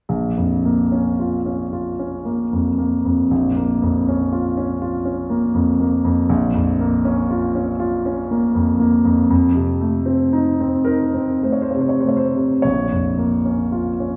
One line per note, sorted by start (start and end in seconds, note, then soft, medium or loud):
0.09 3.26 A#1 soft
0.37 0.82 F2 soft
0.65 1.09 A#3 soft
0.92 1.36 C#4 soft
1.19 1.63 F4 soft
1.46 1.89 C#4 soft
1.73 2.15 F4 soft
1.99 2.41 C#4 soft
2.25 2.68 A#3 soft
2.53 2.94 F2 soft
2.78 3.20 A#3 soft
3.05 3.46 F2 soft
3.31 6.25 A#1 soft
3.57 3.97 A#3 soft
3.82 4.22 F2 soft
4.08 4.47 C#4 soft
4.32 4.71 F4 soft
4.57 4.95 C#4 soft
4.82 5.20 F4 soft
5.05 5.44 C#4 soft
5.30 5.69 A#3 soft
5.54 5.94 F2 soft
5.80 6.19 A#3 soft
6.05 6.29 F2 soft
6.29 9.27 A#1 medium
6.55 6.94 F2 soft
6.80 7.20 A#3 soft
7.05 7.45 C#4 medium
7.30 7.70 F4 medium
7.55 7.95 C#4 soft
7.79 8.19 F4 medium
8.06 8.45 C#4 soft
8.31 8.70 A#3 soft
8.55 8.95 F2 soft
8.80 9.20 A#3 soft
9.05 9.29 F2 soft
9.30 12.59 F2 medium
9.55 9.96 C3 soft
9.81 10.23 A3 soft
10.06 10.49 C4 soft
10.33 10.76 D#4 soft
10.61 11.04 C4 soft
10.85 11.32 D#4 soft
10.85 11.43 A#4 medium
11.14 11.61 C4 soft
11.43 11.92 A3 soft
11.43 11.52 C5 soft
11.52 11.62 C#5 soft
11.62 11.71 C5 soft
11.71 12.24 C3 soft
11.71 11.80 C#5 soft
11.81 11.90 C5 soft
11.89 11.99 C#5 soft
12.00 12.10 C5 soft
12.05 12.52 A3 soft
12.05 12.18 C#5 soft
12.17 12.63 C5 soft
12.35 12.63 C3 soft
12.62 14.16 A#1 soft
12.62 14.16 C#5 medium
12.92 13.34 F2 soft
13.19 13.61 A#3 soft
13.46 13.88 C#4 soft
13.72 14.15 F4 soft
14.00 14.16 C#4 soft